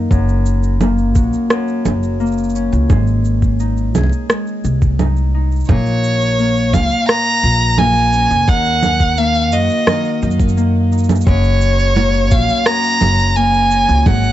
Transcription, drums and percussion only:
0.11 kick loud
0.11 cabasa soft
0.29 cabasa soft
0.46 cabasa medium
0.63 cabasa soft
0.81 low conga medium
0.81 cabasa soft
0.98 cabasa soft
1.15 kick medium
1.15 cabasa medium
1.33 cabasa soft
1.50 cross-stick medium
1.50 cabasa soft
1.68 cabasa soft
1.85 low conga medium
1.85 cabasa medium
2.03 cabasa soft
2.20 cabasa soft
2.26 cabasa soft
2.32 cabasa soft
2.38 cabasa soft
2.44 cabasa soft
2.50 cabasa soft
2.55 cabasa medium
2.73 cabasa soft
2.90 kick loud
2.90 low conga medium
2.90 cabasa soft
3.07 cabasa soft
3.25 cabasa medium
3.42 kick medium
3.42 cabasa soft
3.60 cabasa soft
3.77 cabasa soft
3.95 low conga medium
3.95 cabasa medium
3.98 low conga medium
4.01 low conga soft
4.04 low conga soft
4.07 low conga soft
4.10 low conga soft
4.10 cabasa soft
4.30 cross-stick medium
4.30 cabasa soft
4.47 cabasa soft
4.65 cabasa medium
4.82 kick medium
4.82 cabasa soft
4.99 low conga medium
4.99 cabasa soft
5.17 cabasa soft
5.52 cabasa soft
5.56 cabasa soft
5.60 cabasa soft
5.65 cabasa soft
5.69 kick loud
5.69 low conga medium
5.69 cabasa soft
5.86 cabasa soft
6.04 cabasa medium
6.22 cabasa soft
6.39 cabasa soft
6.57 cabasa soft
6.74 kick medium
6.74 low conga medium
6.74 cabasa medium
6.91 cabasa soft
7.09 cross-stick medium
7.09 cabasa soft
7.26 cabasa soft
7.43 cabasa medium
7.61 cabasa soft
7.78 low conga medium
7.78 cabasa soft
7.96 cabasa soft
8.13 cabasa medium
8.31 cabasa soft
8.48 kick loud
8.48 cabasa soft
8.65 cabasa soft
8.83 low conga medium
8.83 cabasa medium
9.00 kick medium
9.00 cabasa soft
9.17 cabasa soft
9.35 cabasa soft
9.52 cabasa medium
9.70 cabasa soft
9.87 cross-stick medium
9.87 low conga medium
9.87 cabasa soft
10.05 cabasa soft
10.22 cabasa soft
10.31 cabasa soft
10.40 kick medium
10.40 cabasa medium
10.49 cabasa medium
10.57 cabasa soft
10.92 cabasa soft
10.98 cabasa soft
11.04 cabasa soft
11.09 low conga medium
11.09 cabasa medium
11.15 cabasa medium
11.21 cabasa medium
11.27 kick loud
11.44 cabasa soft
11.61 cabasa medium
11.79 cabasa soft
11.96 low conga medium
11.96 cabasa soft
12.14 cabasa soft
12.31 kick loud
12.31 cabasa medium
12.49 cabasa soft
12.66 cross-stick medium
12.66 cabasa soft
12.84 cabasa soft
12.92 cabasa soft
13.01 low conga medium
13.01 cabasa medium
13.10 cabasa soft
13.19 cabasa soft
13.36 cabasa soft
13.54 cabasa soft
13.71 cabasa medium
13.89 cabasa soft
14.06 kick loud
14.06 low conga medium
14.06 cabasa soft
14.24 cabasa soft

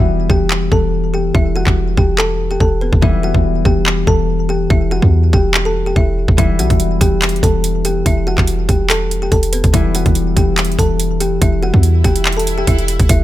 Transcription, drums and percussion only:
0.30 kick medium
0.51 clap loud
0.72 kick loud
1.35 kick loud
1.67 kick loud
1.67 clap medium
1.97 kick loud
2.18 clap loud
2.60 kick medium
2.93 kick loud
3.02 kick loud
3.34 kick medium
3.65 kick medium
3.86 clap loud
4.07 kick loud
4.70 kick loud
5.02 kick medium
5.33 kick loud
5.54 clap loud
5.96 kick loud
6.28 kick loud
6.38 kick loud
6.38 closed hi-hat medium
6.59 closed hi-hat medium
6.70 kick medium
6.70 closed hi-hat soft
6.80 closed hi-hat medium
7.01 kick medium
7.01 closed hi-hat medium
7.22 clap loud
7.22 closed hi-hat medium
7.29 closed hi-hat medium
7.36 closed hi-hat soft
7.43 kick loud
7.43 closed hi-hat medium
7.64 closed hi-hat medium
7.85 closed hi-hat medium
8.06 kick loud
8.06 closed hi-hat medium
8.38 kick medium
8.38 clap medium
8.47 closed hi-hat medium
8.69 kick medium
8.69 closed hi-hat medium
8.90 clap loud
8.90 closed hi-hat medium
9.11 closed hi-hat medium
9.32 kick loud
9.32 closed hi-hat soft
9.43 closed hi-hat medium
9.53 closed hi-hat medium
9.53 open hi-hat medium
9.64 kick loud
9.64 closed hi-hat medium
9.74 kick loud
9.74 closed hi-hat medium
9.95 closed hi-hat medium
10.06 kick loud
10.06 closed hi-hat soft
10.15 closed hi-hat medium
10.37 kick loud
10.37 closed hi-hat medium
10.58 clap loud
10.58 closed hi-hat medium
10.65 closed hi-hat medium
10.72 closed hi-hat soft
10.79 kick loud
10.79 closed hi-hat medium
11.00 closed hi-hat medium
11.20 closed hi-hat medium
11.42 kick loud
11.42 closed hi-hat medium
11.74 kick medium
11.83 closed hi-hat medium
12.04 kick loud
12.04 closed hi-hat soft
12.16 closed hi-hat medium
12.25 clap loud
12.25 closed hi-hat soft
12.32 closed hi-hat medium
12.39 closed hi-hat medium
12.47 closed hi-hat medium
12.67 kick loud
12.67 closed hi-hat medium
12.79 closed hi-hat soft
12.88 closed hi-hat medium
12.88 open hi-hat medium
12.99 kick loud
12.99 closed hi-hat soft
13.09 kick loud
13.09 closed hi-hat medium

